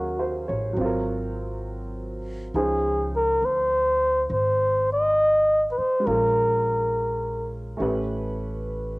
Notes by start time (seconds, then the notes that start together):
Already playing: D#2 F#3 C#4 F#4 G#4 A#4 F5
0.19 C5
0.48 A1 C#5
0.73 G#1 F#3
0.77 C4 F4
0.85 A#4
2.54 C#2 F3 C#4 D#4 G#4 C5
3.16 A#4
3.42 D2 C5
4.30 G#1 C5
4.93 D#5
5.72 B4
5.78 C5, muted upright bass stroke
6.00 G#3
6.04 A#1 C#4 F4 A#4
6.11 A#4
7.77 A1 A3 C#4 G4
7.82 B4